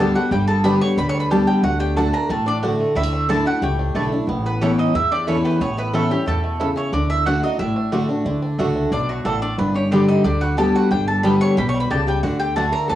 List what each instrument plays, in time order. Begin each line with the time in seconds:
Already playing: upright bass D2, five-string banjo G3 G4
0.00 steel-string acoustic guitar D3 G3 B3 G4, five-string banjo D4, resonator guitar played with a steel bar A4, mandolin A5
0.15 five-string banjo G3, steel-string acoustic guitar B3 G4, resonator guitar played with a steel bar F#4, mandolin F#5
0.31 upright bass G1, steel-string acoustic guitar G2, five-string banjo G3, resonator guitar played with a steel bar G4, mandolin G5
0.48 five-string banjo B3, resonator guitar played with a steel bar A4, mandolin A5
0.64 steel-string acoustic guitar D3 G3 B3 G4, mandolin B3 G4 D5 G5 B5, five-string banjo D4, resonator guitar played with a steel bar B4
0.81 steel-string acoustic guitar B3 G4, five-string banjo G4, resonator guitar played with a steel bar C#5, mandolin C#6
0.97 upright bass D2, steel-string acoustic guitar D3, five-string banjo G3, resonator guitar played with a steel bar B4, mandolin B5
1.09 resonator guitar played with a steel bar C#5, mandolin C#6
1.15 five-string banjo D4
1.19 resonator guitar played with a steel bar B4, mandolin B5
1.30 steel-string acoustic guitar D3 G3 B3 G4, mandolin B3 G4 D5 G5 A5, five-string banjo B3, resonator guitar played with a steel bar A4
1.47 five-string banjo G3, resonator guitar played with a steel bar G4, mandolin G5
1.63 upright bass D2, steel-string acoustic guitar D3, five-string banjo A3, resonator guitar played with a steel bar F#4, mandolin F#5
1.79 five-string banjo D4, resonator guitar played with a steel bar G4, mandolin G5
1.96 steel-string acoustic guitar D3 A3 D4 F#4, mandolin A3 F#4 D5 F#5 A5, five-string banjo D4, resonator guitar played with a steel bar A4
2.13 five-string banjo D4, resonator guitar played with a steel bar A#4, mandolin A#5
2.29 upright bass A1, steel-string acoustic guitar A2, five-string banjo A3, resonator guitar played with a steel bar A4, mandolin A5
2.46 resonator guitar played with a steel bar D4, five-string banjo D4, mandolin D5
2.63 steel-string acoustic guitar D3 A3 D4 F#4, mandolin A3 F#4 D5 F#5, five-string banjo D4
2.80 five-string banjo A3
2.95 upright bass D2, steel-string acoustic guitar D3, five-string banjo G3, resonator guitar played with a steel bar E4, mandolin E5
3.03 five-string banjo A3
3.13 five-string banjo D4
3.29 steel-string acoustic guitar D3 A3 D4 E4, mandolin A3 E4 D5 A5, five-string banjo D4, resonator guitar played with a steel bar A4
3.45 steel-string acoustic guitar D4 E4, resonator guitar played with a steel bar F#4, five-string banjo G4, mandolin F#5
3.62 upright bass C#2, steel-string acoustic guitar A2, five-string banjo A3, resonator guitar played with a steel bar G4, mandolin G5
3.79 five-string banjo D4
3.95 upright bass B1, steel-string acoustic guitar D3 A3 D4 E4, mandolin A3 E4 D5 A5, five-string banjo A3
4.12 five-string banjo D4, steel-string acoustic guitar D4 E4
4.27 upright bass A1, steel-string acoustic guitar A2, five-string banjo B3
4.46 resonator guitar played with a steel bar B3, mandolin B4
4.61 steel-string acoustic guitar E3 B3 C#4 E4, mandolin C#4 A4 C#5 E5 B5, resonator guitar played with a steel bar C#4, five-string banjo G4
4.78 five-string banjo B3, resonator guitar played with a steel bar D#4, mandolin D#5
4.94 upright bass E2, steel-string acoustic guitar E2, five-string banjo E4, resonator guitar played with a steel bar E4, mandolin E5
5.11 resonator guitar played with a steel bar D4, five-string banjo G4, mandolin D5
5.27 steel-string acoustic guitar E3 B3 C#4 E4, five-string banjo A3, mandolin C#4 A4 C#5 E5 B5, resonator guitar played with a steel bar C#4
5.45 resonator guitar played with a steel bar B3, five-string banjo G4, mandolin B4
5.60 upright bass A1, steel-string acoustic guitar A2, five-string banjo B3, resonator guitar played with a steel bar C#4, mandolin C#5
5.77 resonator guitar played with a steel bar B3, five-string banjo E4, mandolin B4
5.93 steel-string acoustic guitar E3 B3 C#4 E4, resonator guitar played with a steel bar A3, five-string banjo A3, mandolin C#4 A4 E5 B5
6.10 resonator guitar played with a steel bar G3, steel-string acoustic guitar C#4 E4, five-string banjo E4, mandolin G4
6.26 upright bass E2, steel-string acoustic guitar B2, resonator guitar played with a steel bar A3, five-string banjo G4, mandolin A4
6.44 five-string banjo A3
6.60 steel-string acoustic guitar C#3, mandolin C#4 A4 E5 B5, five-string banjo E4
6.76 five-string banjo A3, resonator guitar played with a steel bar C#4, mandolin C#5
6.92 upright bass D2, steel-string acoustic guitar D3, resonator guitar played with a steel bar D4, five-string banjo D4, mandolin D5
7.10 five-string banjo D4, resonator guitar played with a steel bar E4, mandolin E5
7.26 steel-string acoustic guitar D3 A3 D4 F#4, mandolin A3 F#4 D5 F#5, five-string banjo D4, resonator guitar played with a steel bar F#4
7.43 five-string banjo D4, steel-string acoustic guitar D4 F#4, resonator guitar played with a steel bar D#4, mandolin D#5
7.58 upright bass A1, steel-string acoustic guitar A2, five-string banjo D4, resonator guitar played with a steel bar E4, mandolin E5
7.76 five-string banjo D4
7.92 steel-string acoustic guitar D3 A3 D4 F#4, mandolin A3 F#4 D5 F#5, five-string banjo A3
8.09 five-string banjo D4, steel-string acoustic guitar D4 F#4
8.25 upright bass D2, steel-string acoustic guitar D3, five-string banjo D4
8.42 five-string banjo D4
8.58 upright bass C#2, mandolin A3 F#4 D5 F#5, five-string banjo A3, steel-string acoustic guitar A3 D4 F#4
8.76 five-string banjo D4
8.91 upright bass B1, steel-string acoustic guitar B2, five-string banjo D4, resonator guitar played with a steel bar D4, mandolin D5
9.09 resonator guitar played with a steel bar F#3, five-string banjo A3, mandolin F#4
9.24 upright bass A1, steel-string acoustic guitar A2, mandolin A3 F#4 A4 D5 F#5, resonator guitar played with a steel bar A3, five-string banjo D4
9.41 five-string banjo A3, resonator guitar played with a steel bar D4, mandolin D5
9.58 upright bass G1, steel-string acoustic guitar G2, resonator guitar played with a steel bar B3, five-string banjo D4, mandolin B4
9.74 resonator guitar played with a steel bar C#4, five-string banjo G4, mandolin C#5
9.91 steel-string acoustic guitar D3 G3 B3 G4, five-string banjo G3, mandolin B3 G4 D5 G5, resonator guitar played with a steel bar D4
10.08 five-string banjo D4, resonator guitar played with a steel bar D#4, mandolin D#5
10.24 upright bass D2, steel-string acoustic guitar D3, resonator guitar played with a steel bar D4, five-string banjo G4, mandolin D5
10.41 five-string banjo G3, resonator guitar played with a steel bar F#4, mandolin F#5
10.57 steel-string acoustic guitar D3 G3 B3 G4, mandolin B3 G4 D5 G5 A5, five-string banjo G4, resonator guitar played with a steel bar A4
10.75 five-string banjo G3, resonator guitar played with a steel bar F#4, mandolin F#5
10.91 upright bass G1, steel-string acoustic guitar G2, five-string banjo D4, resonator guitar played with a steel bar G4, mandolin G5
11.08 resonator guitar played with a steel bar A4, mandolin A5
11.23 steel-string acoustic guitar D3 G3 B3 G4, five-string banjo G3, mandolin B3 G4 D5 G5 B5, resonator guitar played with a steel bar B4
11.41 five-string banjo D4, resonator guitar played with a steel bar C#5, mandolin C#6
11.57 upright bass B1, steel-string acoustic guitar B2, five-string banjo G4, resonator guitar played with a steel bar B4, mandolin B5
11.69 resonator guitar played with a steel bar C#5, mandolin C#6
11.74 five-string banjo G3
11.80 resonator guitar played with a steel bar B4, mandolin B5
11.90 upright bass C#2, steel-string acoustic guitar C#3, mandolin B3 G4 D5 G5 A5, five-string banjo G4, resonator guitar played with a steel bar A4
12.07 five-string banjo G3, resonator guitar played with a steel bar G4, mandolin G5
12.23 upright bass D2, steel-string acoustic guitar D3, five-string banjo D4, resonator guitar played with a steel bar F#4, mandolin F#5
12.39 five-string banjo D4, resonator guitar played with a steel bar G4, mandolin G5
12.56 steel-string acoustic guitar D3 A3 D4 F#4, mandolin A3 F#4 D5 F#5 A5, five-string banjo A3, resonator guitar played with a steel bar A4
12.72 five-string banjo D4, resonator guitar played with a steel bar A#4, mandolin A#5
12.88 upright bass A1, steel-string acoustic guitar A2, five-string banjo D4, resonator guitar played with a steel bar A4, mandolin A5